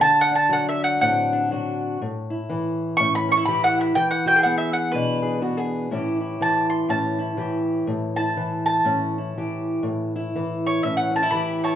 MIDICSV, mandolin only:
0, 0, Header, 1, 2, 480
1, 0, Start_track
1, 0, Tempo, 491400
1, 29, Time_signature, 4, 2, 24, 8
1, 11481, End_track
2, 0, Start_track
2, 0, Title_t, "Mandolin"
2, 0, Program_c, 0, 25
2, 11, Note_on_c, 0, 81, 108
2, 175, Note_off_c, 0, 81, 0
2, 208, Note_on_c, 0, 78, 103
2, 342, Note_off_c, 0, 78, 0
2, 346, Note_on_c, 0, 81, 85
2, 503, Note_off_c, 0, 81, 0
2, 516, Note_on_c, 0, 78, 84
2, 668, Note_off_c, 0, 78, 0
2, 672, Note_on_c, 0, 76, 85
2, 816, Note_off_c, 0, 76, 0
2, 820, Note_on_c, 0, 78, 94
2, 979, Note_off_c, 0, 78, 0
2, 991, Note_on_c, 0, 78, 98
2, 1455, Note_off_c, 0, 78, 0
2, 2900, Note_on_c, 0, 85, 110
2, 3057, Note_off_c, 0, 85, 0
2, 3079, Note_on_c, 0, 83, 98
2, 3227, Note_off_c, 0, 83, 0
2, 3239, Note_on_c, 0, 85, 96
2, 3371, Note_off_c, 0, 85, 0
2, 3375, Note_on_c, 0, 83, 88
2, 3534, Note_off_c, 0, 83, 0
2, 3555, Note_on_c, 0, 78, 101
2, 3704, Note_off_c, 0, 78, 0
2, 3720, Note_on_c, 0, 83, 77
2, 3858, Note_off_c, 0, 83, 0
2, 3861, Note_on_c, 0, 79, 87
2, 4008, Note_off_c, 0, 79, 0
2, 4012, Note_on_c, 0, 78, 96
2, 4172, Note_off_c, 0, 78, 0
2, 4176, Note_on_c, 0, 79, 100
2, 4326, Note_off_c, 0, 79, 0
2, 4330, Note_on_c, 0, 78, 82
2, 4467, Note_off_c, 0, 78, 0
2, 4471, Note_on_c, 0, 76, 95
2, 4619, Note_off_c, 0, 76, 0
2, 4623, Note_on_c, 0, 78, 91
2, 4796, Note_off_c, 0, 78, 0
2, 4802, Note_on_c, 0, 71, 94
2, 5276, Note_off_c, 0, 71, 0
2, 6273, Note_on_c, 0, 81, 81
2, 6539, Note_off_c, 0, 81, 0
2, 6543, Note_on_c, 0, 84, 68
2, 6731, Note_off_c, 0, 84, 0
2, 6740, Note_on_c, 0, 81, 78
2, 7486, Note_off_c, 0, 81, 0
2, 7974, Note_on_c, 0, 81, 80
2, 8448, Note_off_c, 0, 81, 0
2, 8458, Note_on_c, 0, 81, 83
2, 9868, Note_off_c, 0, 81, 0
2, 10418, Note_on_c, 0, 73, 80
2, 10578, Note_off_c, 0, 73, 0
2, 10579, Note_on_c, 0, 76, 77
2, 10711, Note_off_c, 0, 76, 0
2, 10715, Note_on_c, 0, 78, 72
2, 10886, Note_off_c, 0, 78, 0
2, 10900, Note_on_c, 0, 81, 85
2, 11040, Note_off_c, 0, 81, 0
2, 11044, Note_on_c, 0, 83, 74
2, 11367, Note_off_c, 0, 83, 0
2, 11367, Note_on_c, 0, 73, 65
2, 11375, Note_on_c, 0, 81, 62
2, 11481, Note_off_c, 0, 73, 0
2, 11481, Note_off_c, 0, 81, 0
2, 11481, End_track
0, 0, End_of_file